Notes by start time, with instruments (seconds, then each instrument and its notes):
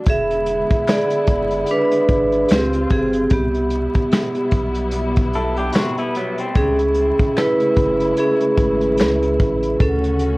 0.06 sub bass E1, string section D3 G#3 B3 E4, vibraphone G#4, kick, closed hi-hat
0.10 vibraphone E5
0.30 closed hi-hat
0.46 closed hi-hat
0.71 kick, closed hi-hat
0.87 vibraphone G#4 D5, finger snap, snare, closed hi-hat
1.10 closed hi-hat
1.27 sub bass F#1, kick, closed hi-hat
1.50 closed hi-hat
1.66 closed hi-hat
1.71 vibraphone D4 B4
1.91 closed hi-hat
2.09 sub bass G#1, kick, closed hi-hat
2.32 closed hi-hat
2.48 sub bass C#2, string section C#3 C4 F4, vibraphone C4 G4, finger snap, snare, closed hi-hat
2.73 closed hi-hat
2.90 sub bass G1, vibraphone C4 G#4, kick, closed hi-hat
3.13 closed hi-hat
3.30 sub bass C2, string section B2 G3 B3 E4, vibraphone B3 G4, kick, closed hi-hat
3.54 closed hi-hat
3.70 closed hi-hat
3.94 kick, closed hi-hat
4.11 finger snap, snare, closed hi-hat
4.35 closed hi-hat
4.51 sub bass B1, kick, closed hi-hat
4.75 closed hi-hat
4.91 closed hi-hat
5.16 kick, closed hi-hat
5.33 clean electric guitar E4 A4, closed hi-hat
5.57 clean electric guitar D4 G4, closed hi-hat
5.73 clean electric guitar C4 F#4, finger snap, snare, closed hi-hat
5.98 clean electric guitar B3 E4, closed hi-hat
6.15 clean electric guitar F#3 B3, closed hi-hat
6.38 clean electric guitar G3 C4, closed hi-hat
6.55 sub bass C#2, string section C#3 G#3 A3 E4, vibraphone C#4 G#4, kick, closed hi-hat
6.79 closed hi-hat
6.94 closed hi-hat
7.19 kick, closed hi-hat
7.36 vibraphone E4 B4, finger snap, snare, closed hi-hat
7.60 closed hi-hat
7.76 sub bass F#1, kick, closed hi-hat
8.00 closed hi-hat
8.17 vibraphone C#4 G#4, closed hi-hat
8.40 closed hi-hat
8.58 sub bass G#1, kick, closed hi-hat
8.81 closed hi-hat
8.97 sub bass C#2, finger snap, snare, closed hi-hat
9.22 closed hi-hat
9.40 sub bass A1, kick, closed hi-hat
9.62 closed hi-hat
9.79 sub bass D2, string section C#3 A3 C#4 F#4, vibraphone C#4 A4, kick, closed hi-hat
10.03 closed hi-hat
10.19 closed hi-hat